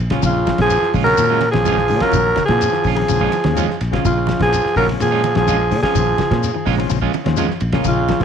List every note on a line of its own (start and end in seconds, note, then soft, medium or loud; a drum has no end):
0.00 0.18 A#1 medium
0.10 0.32 C#3 medium
0.10 0.20 C#3 medium
0.10 0.32 F3 medium
0.10 0.32 G#3 medium
0.10 0.33 C4 medium
0.10 0.26 C#4 medium
0.10 0.25 F4 medium
0.10 kick medium
0.10 snare medium
0.10 ride bell medium
0.23 0.51 A#1 loud
0.23 0.41 C#3 loud
0.23 0.58 F4 loud
0.23 kick loud
0.23 ride bell medium
0.23 high conga soft
0.23 low conga medium
0.23 shekere medium
0.27 0.58 C#3 medium
0.35 muted clean electric guitar stroke soft
0.46 0.65 F3 medium
0.46 kick medium
0.46 snare medium
0.46 ride bell medium
0.46 high conga loud
0.46 shekere soft
0.57 0.77 A#1 medium
0.57 0.79 C#3 medium
0.57 0.79 F3 medium
0.57 0.79 G#3 medium
0.57 0.79 C4 medium
0.57 muted clean electric guitar stroke soft
0.57 kick medium
0.57 snare medium
0.57 ride bell medium
0.57 low conga medium
0.62 0.94 F3 loud
0.62 0.94 G#4 loud
0.70 ride bell medium
0.70 high conga soft
0.70 shekere loud
0.82 muted fingered electric bass stroke soft
0.82 muted clean electric guitar stroke medium
0.82 snare soft
0.93 1.13 A#1 loud
0.93 1.12 C#3 medium
0.93 1.06 G#3 medium
0.93 1.06 C#4 medium
0.93 1.05 F4 medium
0.93 kick medium
0.93 snare soft
0.93 open hi-hat medium
0.93 shekere soft
1.04 1.27 C#3 medium
1.04 1.27 F3 medium
1.04 1.48 F#3 loud
1.04 1.27 G#3 medium
1.04 1.27 C4 medium
1.04 1.48 A#4 loud
1.04 muted clean electric guitar stroke medium
1.04 ride bell medium
1.04 low conga medium
1.17 1.56 A#2 loud
1.17 1.36 D#3 medium
1.17 muted clean electric guitar stroke soft
1.17 ride bell medium
1.17 shekere medium
1.30 1.41 G#3 medium
1.30 1.42 C#4 medium
1.30 1.42 F4 medium
1.41 muted clean electric guitar stroke soft
1.41 snare soft
1.41 ride bell medium
1.41 high conga loud
1.41 shekere soft
1.51 1.92 A#1 loud
1.51 1.74 C#3 medium
1.51 1.71 D#3 medium
1.51 1.74 F3 medium
1.51 2.06 F3 loud
1.51 1.75 G#3 medium
1.51 1.75 C4 medium
1.51 2.04 G#4 loud
1.51 snare medium
1.51 ride bell medium
1.51 high conga loud
1.65 1.78 G#3 medium
1.65 1.78 C#4 medium
1.65 1.77 F4 medium
1.65 ride bell medium
1.65 high conga medium
1.65 shekere loud
1.78 muted clean electric guitar stroke soft
1.78 snare soft
1.78 high conga medium
1.88 2.00 A#2 loud
1.88 2.07 C#3 medium
1.88 muted clean electric guitar stroke soft
1.88 open hi-hat medium
1.88 shekere soft
2.00 2.22 C#3 medium
2.00 2.22 F3 medium
2.00 2.22 G#3 medium
2.00 2.22 C4 medium
2.00 2.16 C#4 medium
2.00 2.16 F4 medium
2.00 2.45 A#4 loud
2.00 muted fingered electric bass stroke soft
2.00 kick medium
2.00 snare medium
2.00 ride bell medium
2.04 2.47 F#3 loud
2.11 2.32 A#1 loud
2.11 2.31 D#3 loud
2.11 kick loud
2.11 ride bell soft
2.11 high conga soft
2.11 low conga medium
2.11 shekere medium
2.26 muted clean electric guitar stroke soft
2.36 2.55 C#3 medium
2.36 kick medium
2.36 snare medium
2.36 ride bell medium
2.36 high conga loud
2.36 shekere soft
2.46 2.68 A#2 loud
2.46 2.91 F3 medium
2.46 2.90 G#4 loud
2.46 kick medium
2.46 snare medium
2.46 ride bell medium
2.46 low conga medium
2.50 2.70 C#3 medium
2.50 2.71 F3 medium
2.50 2.71 G#3 medium
2.50 2.71 C4 loud
2.50 muted clean electric guitar stroke soft
2.61 ride bell medium
2.61 shekere loud
2.72 2.82 D#3 medium
2.72 muted clean electric guitar stroke soft
2.72 snare soft
2.84 3.04 A#1 loud
2.84 2.94 C#3 medium
2.84 2.97 C#4 medium
2.84 2.97 F4 medium
2.84 muted clean electric guitar stroke medium
2.84 kick medium
2.84 open hi-hat medium
2.84 shekere soft
2.96 3.18 C#3 medium
2.96 3.06 D#3 medium
2.96 3.18 F3 medium
2.96 3.77 F3 medium
2.96 3.19 G#3 medium
2.96 3.19 C4 medium
2.96 3.76 G#4 loud
2.96 muted clean electric guitar stroke soft
2.96 ride bell medium
3.08 3.28 A#1 medium
3.08 3.18 C#3 medium
3.08 muted clean electric guitar stroke soft
3.08 ride bell medium
3.08 high conga soft
3.08 shekere medium
3.21 3.39 F3 medium
3.21 3.32 G#3 medium
3.21 3.32 C#4 medium
3.21 3.33 F4 medium
3.21 kick medium
3.32 muted clean electric guitar stroke soft
3.32 snare soft
3.32 ride bell medium
3.32 high conga medium
3.32 shekere soft
3.44 3.64 D#2 medium
3.44 3.65 C#3 medium
3.44 3.54 D#3 medium
3.44 3.65 F3 medium
3.44 3.66 G#3 medium
3.44 3.66 C4 medium
3.44 snare medium
3.44 ride bell medium
3.44 high conga medium
3.55 3.74 F3 medium
3.55 3.69 G#3 medium
3.55 3.68 C#4 medium
3.55 3.68 F4 medium
3.55 snare soft
3.55 ride bell medium
3.55 high conga medium
3.55 shekere medium
3.68 muted clean electric guitar stroke medium
3.68 snare soft
3.68 high conga medium
3.81 4.00 A#1 medium
3.81 muted clean electric guitar stroke soft
3.81 snare soft
3.81 ride bell medium
3.81 shekere soft
3.91 4.13 C#3 medium
3.91 4.01 C#3 medium
3.91 4.13 F3 medium
3.91 4.13 G#3 medium
3.91 4.13 C4 medium
3.91 4.08 C#4 soft
3.91 4.07 F4 medium
3.91 kick medium
3.91 snare medium
3.91 ride bell medium
4.05 4.33 A#1 medium
4.05 4.23 C#3 loud
4.05 4.40 C#3 medium
4.05 4.39 F4 loud
4.05 kick loud
4.05 ride bell medium
4.05 high conga soft
4.05 low conga medium
4.05 shekere loud
4.18 muted clean electric guitar stroke soft
4.27 4.46 F3 medium
4.27 kick medium
4.27 snare medium
4.27 ride bell medium
4.27 high conga loud
4.27 shekere soft
4.39 4.59 A#1 medium
4.39 4.61 C#3 medium
4.39 4.61 F3 medium
4.39 4.61 G#3 medium
4.39 4.62 C4 medium
4.39 4.75 G#4 loud
4.39 muted clean electric guitar stroke medium
4.39 kick medium
4.39 snare medium
4.39 ride bell medium
4.39 low conga medium
4.45 4.76 F3 medium
4.53 ride bell medium
4.53 shekere medium
4.65 muted clean electric guitar stroke soft
4.65 muted fingered electric bass stroke soft
4.65 snare soft
4.76 4.95 A#1 loud
4.76 4.94 C#3 medium
4.76 4.88 F#3 medium
4.76 4.87 C#4 medium
4.76 4.86 F4 medium
4.76 4.88 A#4 loud
4.76 kick medium
4.76 open hi-hat medium
4.76 shekere soft
4.88 5.08 C#3 medium
4.88 5.09 F3 medium
4.88 5.09 G#3 medium
4.88 5.09 C4 medium
4.88 muted clean electric guitar stroke soft
4.88 snare soft
4.88 ride bell medium
4.88 high conga medium
5.00 5.38 A#2 medium
5.00 5.18 D#3 loud
5.00 5.35 F3 medium
5.00 5.34 G#4 loud
5.00 muted clean electric guitar stroke soft
5.00 snare soft
5.00 ride bell medium
5.00 shekere loud
5.11 5.23 G#3 medium
5.11 5.23 C#4 medium
5.11 5.23 F4 medium
5.24 snare soft
5.24 ride bell medium
5.24 high conga loud
5.24 shekere soft
5.35 5.73 A#1 loud
5.35 5.56 C#3 medium
5.35 5.53 D#3 medium
5.35 5.56 F3 medium
5.35 5.81 F3 medium
5.35 5.56 G#3 medium
5.35 5.56 C4 medium
5.35 5.80 G#4 loud
5.35 snare medium
5.35 ride bell medium
5.35 high conga medium
5.47 5.60 G#3 medium
5.47 5.59 C#4 medium
5.47 5.58 F4 medium
5.47 snare soft
5.47 ride bell medium
5.47 high conga medium
5.47 shekere loud
5.59 muted clean electric guitar stroke medium
5.71 5.81 A#2 loud
5.71 5.89 C#3 medium
5.71 muted clean electric guitar stroke soft
5.71 open hi-hat medium
5.71 shekere soft
5.82 6.03 C#3 medium
5.82 6.04 F3 medium
5.82 6.74 F3 medium
5.82 6.04 G#3 medium
5.82 6.04 C4 medium
5.82 5.98 C#4 medium
5.82 5.97 F4 medium
5.82 6.74 G#4 loud
5.82 muted fingered electric bass stroke soft
5.82 kick medium
5.82 snare medium
5.82 ride bell medium
5.95 6.14 A#1 loud
5.95 6.13 D#3 loud
5.95 kick loud
5.95 ride bell medium
5.95 high conga soft
5.95 low conga medium
5.95 shekere medium
6.07 muted clean electric guitar stroke soft
6.18 6.37 C#3 medium
6.18 kick medium
6.18 snare medium
6.18 ride bell medium
6.18 high conga loud
6.18 shekere soft
6.30 6.49 A#2 loud
6.30 6.51 C#3 medium
6.30 6.51 F3 medium
6.30 6.52 G#3 medium
6.30 6.52 C4 loud
6.30 muted clean electric guitar stroke soft
6.30 kick medium
6.30 snare medium
6.30 ride bell medium
6.30 low conga loud
6.43 snare soft
6.43 ride bell medium
6.43 shekere medium
6.54 6.64 D#3 medium
6.54 muted clean electric guitar stroke medium
6.65 6.85 A#1 loud
6.65 6.75 C#3 medium
6.65 6.78 G#3 medium
6.65 6.77 C#4 medium
6.65 6.76 F4 medium
6.65 kick medium
6.65 open hi-hat medium
6.65 shekere soft
6.77 6.99 C#3 medium
6.77 6.87 D#3 medium
6.77 6.99 F3 medium
6.77 6.99 G#3 medium
6.77 6.99 C4 loud
6.77 muted clean electric guitar stroke medium
6.77 ride bell medium
6.77 low conga medium
6.90 7.08 A#1 medium
6.90 6.99 C#3 loud
6.90 muted clean electric guitar stroke soft
6.90 ride bell medium
6.90 shekere medium
7.02 7.20 F3 medium
7.02 7.13 G#3 medium
7.02 7.13 C#4 medium
7.02 7.14 F4 medium
7.02 kick medium
7.13 muted clean electric guitar stroke soft
7.13 ride bell medium
7.13 high conga loud
7.13 shekere soft
7.24 7.44 D#2 medium
7.24 7.45 C#3 loud
7.24 7.35 D#3 medium
7.24 7.46 F3 medium
7.24 7.46 G#3 loud
7.24 7.46 C4 loud
7.24 snare medium
7.24 ride bell medium
7.24 high conga medium
7.37 7.56 F3 medium
7.37 7.49 G#3 medium
7.37 7.49 C#4 medium
7.37 7.49 F4 medium
7.37 snare soft
7.37 ride bell medium
7.37 high conga medium
7.37 shekere medium
7.49 muted clean electric guitar stroke medium
7.49 snare soft
7.49 high conga medium
7.60 7.80 A#1 medium
7.60 muted clean electric guitar stroke soft
7.60 ride bell medium
7.60 shekere soft
7.72 7.94 C#3 medium
7.72 7.83 C#3 medium
7.72 7.94 F3 medium
7.72 7.94 G#3 medium
7.72 7.94 A#3 loud
7.72 7.88 C#4 medium
7.72 7.87 F4 medium
7.72 kick medium
7.72 snare medium
7.72 ride bell medium
7.84 8.12 A#1 medium
7.84 8.03 C#3 loud
7.84 8.20 F4 loud
7.84 kick medium
7.84 ride bell medium
7.84 high conga soft
7.84 low conga medium
7.84 shekere medium
7.89 8.20 C#3 medium
7.97 muted clean electric guitar stroke medium
8.08 8.24 F3 medium
8.08 kick medium
8.08 snare medium
8.08 ride bell medium
8.08 high conga loud
8.08 shekere soft
8.19 8.24 A#1 medium
8.19 8.24 C#3 medium
8.19 8.24 F3 medium
8.19 8.24 G#3 medium
8.19 8.24 C4 loud
8.19 muted clean electric guitar stroke soft
8.19 kick medium
8.19 ride bell medium
8.19 low conga medium